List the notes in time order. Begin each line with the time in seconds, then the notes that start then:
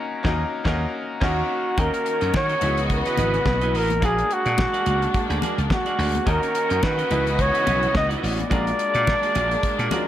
Already playing: A#3 C#4 D#4 F#4 A#4
0.23 D#2 A#3 C#4 D#4 F#4 A#4 D#5, kick, snare
0.64 D#2 A#3 C#4 D#4 F#4 A#4 D#5, kick, snare
1.20 D#2 A#3 C#4 D#4 F#4 A#4 D#5, kick, snare, crash
1.77 D#2 D#3 A#3 C#4 D#4 F#4 A#4 D#5, kick, closed hi-hat, muted conga
1.93 muted clean electric guitar stroke, closed hi-hat
2.06 muted clean electric guitar stroke, closed hi-hat
2.21 F#2 C#4 F#4 A#4 D#5, closed hi-hat
2.34 D#3 C#5, muted clean electric guitar stroke, kick, snare, high conga
2.49 C#4 F#4 A#4 D#5, closed hi-hat
2.61 C#2 C#3 E3 B3 D#4 E4 F#4 G#4 B4 D#5, closed hi-hat, muted conga, low conga
2.77 muted clean electric guitar stroke, closed hi-hat
2.90 B4, muted clean electric guitar stroke, kick, closed hi-hat, muted conga
3.05 E4 F#4 B4 D#5, snare, closed hi-hat
3.17 G#1 E4 F#4 B4 D#5, closed hi-hat, muted conga, low conga
3.34 muted clean electric guitar stroke, closed hi-hat
3.46 B1, muted clean electric guitar stroke, kick, snare, high conga
3.61 E4 F#4 B4 D#5, closed hi-hat
3.74 A1 E4 F#4 A#4 B4 D#5, open hi-hat
3.90 muted clean electric guitar stroke, closed hi-hat, high conga
4.00 A#1 G#3 A#3 D4 F#4 G#4 D5 F5, kick, closed hi-hat, muted conga
4.05 G#4
4.18 muted clean electric guitar stroke, closed hi-hat
4.30 F#4, muted clean electric guitar stroke, closed hi-hat
4.45 A#2 A#3 F#4 G#4 D5, closed hi-hat
4.58 muted clean electric guitar stroke, kick, snare, high conga
4.73 A#3 F#4 G#4 D5, closed hi-hat
4.85 C#2 A#3 F#4 G#4 D5, closed hi-hat, muted conga
5.01 muted clean electric guitar stroke, closed hi-hat
5.13 muted clean electric guitar stroke, kick, closed hi-hat, muted conga
5.29 D2 A#3 F#4 G#4 D5, closed hi-hat
5.42 A#3 F#4 G#4 D5, closed hi-hat, muted conga, low conga
5.58 C#2, muted clean electric guitar stroke, closed hi-hat
5.70 F#4, muted clean electric guitar stroke, kick, snare, high conga
5.86 A#3 F#4 G#4 D5, closed hi-hat
5.99 D2 A#3 F#4 G#4 D5, open hi-hat
6.14 muted clean electric guitar stroke, closed hi-hat, high conga
6.26 D#2 D#3 A#3 C#4 D#4 F#4 A#4 D#5, kick, closed hi-hat, muted conga
6.42 muted clean electric guitar stroke, closed hi-hat
6.54 muted clean electric guitar stroke, closed hi-hat
6.69 F#2 C#4 F#4 A#4 D#5, closed hi-hat
6.82 D#3 B4, muted clean electric guitar stroke, kick, snare, high conga
6.98 C#4 F#4 A#4 D#5, closed hi-hat
7.10 C#2 C#3 E3 G#3 B3 D#4 E4 F#4 B4 D#5, closed hi-hat, muted conga, low conga
7.26 muted clean electric guitar stroke, closed hi-hat
7.38 C#5, muted clean electric guitar stroke, kick, closed hi-hat
7.53 E4 F#4 B4 D#5, closed hi-hat
7.65 B1 E4 F#4 B4 D#5, closed hi-hat, muted conga, low conga
7.82 muted clean electric guitar stroke, closed hi-hat
7.94 C#2 D#5, muted clean electric guitar stroke, kick, snare, high conga
8.09 E4 F#4 B4 D#5, closed hi-hat
8.22 A1 E4 F#4 B4 D5 D#5, open hi-hat
8.38 muted clean electric guitar stroke, closed hi-hat, high conga
8.50 A#1 G#3 A#3 D4 F4 F#4 G#4 A#4 D5, kick, closed hi-hat, muted conga
8.66 muted clean electric guitar stroke, closed hi-hat
8.79 muted clean electric guitar stroke, closed hi-hat
8.94 A#2 A#3 F#4 G#4 D5, closed hi-hat
9.07 kick, snare, high conga
9.22 A#3 F#4 G#4 D5, closed hi-hat
9.35 A#1 A#3 F#4 G#4 D5, closed hi-hat, muted conga, low conga
9.50 muted clean electric guitar stroke, closed hi-hat
9.63 muted clean electric guitar stroke, kick, closed hi-hat, muted conga
9.78 A#2 A#3 F#4 G#4 D5, closed hi-hat
9.90 G#3 A#3 C#4 F4 F#4 G#4 A#4 D5, closed hi-hat, muted conga, low conga
9.98 D4